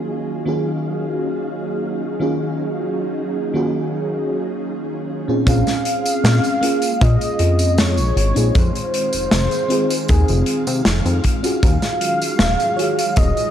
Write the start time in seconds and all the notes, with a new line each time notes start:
Already playing: D#3 F#3 A#3 C#4 D#4 F4 F#4 G#4 F5
0.45 D#3 A#3 C#4 F4 F#4 G#4
2.19 D#3 A#3 C#4 F4 F#4 G#4
3.53 D#3 A#3 C#4 F4 F#4 G#4
5.28 A#2 C4 C#4 F4 G#4
5.46 A#1 G#3 C4 C#4 F4 G#4 F5, kick, closed hi-hat, tambourine
5.67 snare, closed hi-hat, tambourine
5.85 closed hi-hat
6.06 closed hi-hat, tambourine
6.24 A#2, snare, closed hi-hat, tambourine
6.44 closed hi-hat, tambourine
6.61 A#3 C#4 F4 G#4, closed hi-hat
6.82 closed hi-hat, tambourine
7.01 A#2 D#5, kick, closed hi-hat, tambourine
7.21 closed hi-hat, tambourine
7.39 F2, closed hi-hat
7.59 closed hi-hat, tambourine
7.78 C#5, snare, closed hi-hat, tambourine
7.98 A#1, closed hi-hat, tambourine
8.17 G#1, closed hi-hat
8.35 A#1 C4 D#4 F4 G#4, closed hi-hat, tambourine
8.49 C#5
8.54 F2 D#3 C5 F5, kick, closed hi-hat, tambourine
8.75 closed hi-hat, tambourine
8.94 closed hi-hat
9.13 F1, closed hi-hat, tambourine
9.31 F1, snare, closed hi-hat, tambourine
9.51 closed hi-hat, tambourine
9.68 C4 D#4 F4 G#4, closed hi-hat
9.90 closed hi-hat, tambourine
10.08 D#2 G#4, kick, closed hi-hat, tambourine
10.28 F1, closed hi-hat, tambourine
10.46 closed hi-hat
10.67 C3, closed hi-hat, tambourine
10.85 F1, snare, closed hi-hat, tambourine
11.05 F2, closed hi-hat, tambourine
11.24 kick, closed hi-hat
11.43 C#4 F4 F#4 G#4, closed hi-hat, tambourine
11.63 D#2 D#3 F#3 G#3 F5, kick, closed hi-hat, tambourine
11.82 snare, closed hi-hat, tambourine
12.01 closed hi-hat
12.22 closed hi-hat, tambourine
12.39 D#1, snare, closed hi-hat, tambourine
12.60 closed hi-hat, tambourine
12.76 F4 F#4 G#4 C#5, closed hi-hat
12.99 closed hi-hat, tambourine
13.16 D#1 D#5, kick, closed hi-hat, tambourine
13.37 closed hi-hat, tambourine